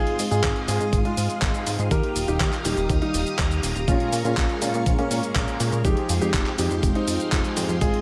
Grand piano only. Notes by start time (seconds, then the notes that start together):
Already playing: F4 G#4
0.31 F4 G#4
0.68 F4 G#4
1.05 G#3 F4
1.91 G4 A#4
2.28 D#4 G4
2.65 D#4 G4
3.02 G3 D#4
3.88 C#4 F4
4.25 C#4 F4
4.62 C#4 F4
4.99 A#3 C#4
5.85 D#4 G4
6.21 D#4 G4
6.58 D#4 G4
6.95 C4 D#4
7.81 F4 G#4